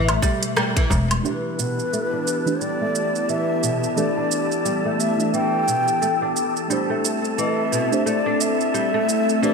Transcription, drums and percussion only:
0.08 closed hi-hat, darbuka tek, low woodblock, shaker
0.22 kick, darbuka ka, shaker
0.43 closed hi-hat, shaker
0.57 cross-stick, darbuka ka, shaker
0.77 kick, closed hi-hat, shaker
0.90 kick, darbuka ka, darbuka tek, shaker
1.11 closed hi-hat, low woodblock, shaker
1.25 shaker
1.59 shaker
1.79 shaker
1.93 shaker
2.27 shaker
2.47 shaker
2.61 shaker
2.95 shaker
3.15 shaker
3.29 shaker
3.63 shaker
3.83 shaker
3.97 shaker
4.31 shaker
4.52 shaker
4.66 shaker
5.00 shaker
5.20 shaker
5.34 shaker
5.68 shaker
5.88 shaker
6.02 shaker
6.36 shaker
6.56 shaker
6.71 shaker
7.05 shaker
7.25 shaker
7.39 shaker
7.73 shaker
7.93 shaker
8.07 shaker
8.41 shaker
8.61 shaker
8.75 shaker
9.09 shaker
9.29 shaker
9.43 shaker

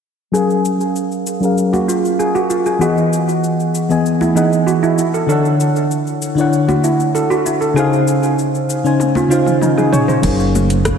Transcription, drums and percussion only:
0.35 cabasa
0.50 cabasa
0.65 cabasa
0.81 cabasa
0.96 cabasa
1.12 cabasa
1.27 cabasa
1.43 cabasa
1.58 cabasa
1.73 high conga, cabasa
1.89 cabasa
2.05 cabasa
2.20 cabasa
2.35 cabasa
2.50 cabasa
2.66 cabasa
2.81 cabasa
2.98 cabasa
3.13 cabasa
3.29 cabasa
3.44 cabasa
3.60 cabasa
3.75 cabasa
3.90 cabasa
4.06 cabasa
4.21 high conga, cabasa
4.37 cabasa
4.53 cabasa
4.68 cabasa
4.83 cabasa
4.98 cabasa
5.14 cabasa
5.29 cabasa
5.45 cabasa
5.60 cabasa
5.76 cabasa
5.91 cabasa
6.07 cabasa
6.22 cabasa
6.38 cabasa
6.53 cabasa
6.68 high conga, cabasa
6.84 cabasa
7.00 cabasa
7.15 cabasa
7.31 cabasa
7.46 cabasa
7.62 cabasa
7.77 cabasa
7.93 cabasa
8.07 cabasa
8.23 cabasa
8.39 cabasa
8.55 cabasa
8.70 cabasa
8.86 cabasa
9.00 high tom, cabasa
9.15 high tom, high conga, cabasa
9.31 cabasa
9.46 mid tom, cabasa
9.62 mid tom, cabasa
9.78 mid tom, cabasa
9.93 mid tom, cabasa
10.08 mid tom, cabasa
10.23 kick, closed hi-hat, crash, cabasa
10.40 cabasa
10.55 high conga, cabasa
10.70 closed hi-hat, cabasa
10.85 kick, cross-stick, closed hi-hat, cabasa

